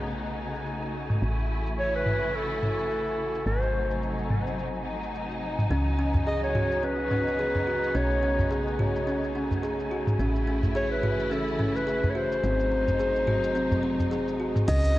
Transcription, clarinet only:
1.79 1.94 C#5 loud
1.95 2.37 B4 medium
2.35 3.46 A4 medium
3.47 3.99 C5 medium
6.27 6.42 D#5 loud
6.43 6.85 C#5 medium
6.84 7.97 B4 medium
7.95 8.51 C#5 medium
10.76 10.91 C#5 loud
10.92 11.34 B4 medium
11.32 11.78 A4 medium
11.76 12.11 B4 medium
12.10 12.17 C#5 medium
12.16 14.40 C5 medium
14.68 14.99 D#5 loud

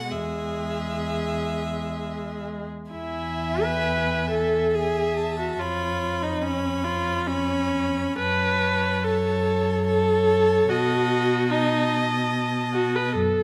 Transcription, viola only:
0.11 2.66 G#3 soft
2.92 3.65 E4 medium
3.64 4.29 B4 medium
4.30 4.75 A4 medium
4.74 5.38 G#4 medium
5.39 5.61 F#4 soft
5.60 6.24 F4 medium
6.23 6.44 D#4 medium
6.42 6.86 C#4 medium
6.84 7.28 F4 medium
7.27 8.18 C#4 medium
8.18 9.06 B4 medium
9.04 9.86 A4 medium
9.86 10.70 A4 medium
10.69 11.52 F#4 medium
11.51 11.91 D#4 medium
12.73 12.97 F#4 medium
12.95 13.15 B4 medium
13.15 13.43 A4 medium

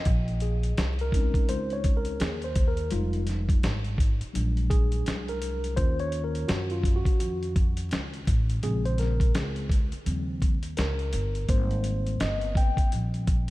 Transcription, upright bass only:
0.06 0.74 A#1 loud
0.78 1.32 C2 medium
1.34 muted upright bass stroke soft
1.49 2.17 C#2 medium
2.20 2.88 D#2 loud
2.92 3.60 F1 loud
3.63 4.18 G#1 medium
4.21 muted upright bass stroke soft
4.35 5.03 A#1 medium
5.07 5.74 C2 medium
5.77 6.45 D#2 loud
6.49 7.04 F#2 medium
7.06 muted upright bass stroke soft
7.21 7.88 F2 medium
7.92 8.26 C#2 medium
8.27 8.61 A1 medium
8.63 9.31 A#1 loud
9.35 9.90 C#2 medium
9.93 muted upright bass stroke soft
10.06 10.74 D#2 medium
10.78 11.12 C#2 loud
11.14 11.47 G1 medium
11.49 12.17 G#1 medium
12.21 12.75 G1 medium
12.77 muted upright bass stroke soft
12.93 13.50 A#1 medium

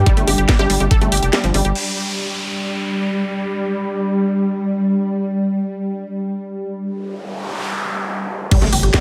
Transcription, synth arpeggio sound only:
0.06 0.11 G3 loud
0.17 0.22 A3 medium
0.28 0.32 G4 medium
0.38 0.45 G4 medium
0.49 0.52 G3 loud
0.59 0.62 G4 loud
0.70 0.75 G3 medium
0.80 0.85 G4 medium
0.91 0.96 A4 loud
1.01 1.06 A3 medium
1.12 1.17 G4 medium
1.23 1.30 G4 medium
1.33 1.38 G3 medium
1.44 1.51 F3 medium
1.54 1.62 G3 medium
1.65 1.70 G4 medium
8.51 8.56 G3 loud
8.62 8.67 A3 medium
8.73 8.77 G4 medium
8.83 8.90 G4 medium
8.94 8.97 G3 loud

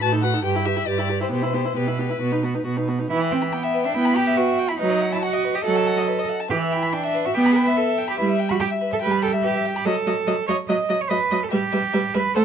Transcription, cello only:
0.02 0.39 A2 medium
0.44 0.83 G2 medium
0.88 1.27 G2 medium
1.32 1.72 B2 medium
1.77 2.16 B2 medium
2.21 2.61 B2 medium
2.66 3.05 B2 medium
3.10 3.18 E4 medium
3.31 3.39 C4 medium
3.53 3.87 B3 medium
3.85 3.96 D4 medium
3.95 4.17 E4 medium
4.16 4.39 G4 medium
4.37 4.71 F#4 medium
4.70 4.79 E4 medium
4.79 5.11 D#4 medium
5.12 5.21 E4 medium
5.22 5.57 F#4 medium
5.55 5.64 G4 medium
5.65 6.27 A4 medium
6.50 6.58 G4 medium
6.72 6.95 E4 medium
6.93 7.27 D4 medium
7.26 7.37 F#4 medium
7.35 7.58 G4 medium
7.56 7.79 B4 medium
7.77 8.08 A4 medium
8.10 8.18 G4 medium
8.18 8.26 E4 medium
8.51 8.55 F#4 medium
8.60 8.68 G4 medium
8.93 8.97 A4 medium
9.02 9.23 B4 medium
9.23 9.31 A4 medium
9.44 9.74 G4 medium
9.76 9.87 G4 medium
9.86 10.47 A4 medium
10.48 10.56 C#5 medium
10.69 11.02 D#5 medium
11.01 11.11 C#5 medium
11.10 11.45 B4 medium
11.43 11.51 A4 medium
11.52 12.16 G4 medium
12.14 12.35 B4 medium
12.35 12.43 A4 medium

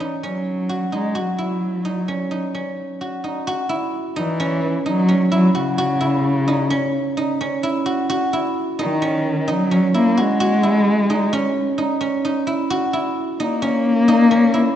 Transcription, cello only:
0.23 0.89 F#3 medium
0.94 1.20 G#3 medium
1.18 3.02 F#3 medium
4.17 4.82 E3 medium
4.87 5.30 F#3 loud
5.34 5.55 F#3 medium
5.57 7.37 C#3 medium
8.80 9.51 D#3 medium
9.50 9.95 F#3 loud
9.96 10.21 A#3 medium
10.20 12.02 G#3 loud
13.38 14.76 A#3 loud

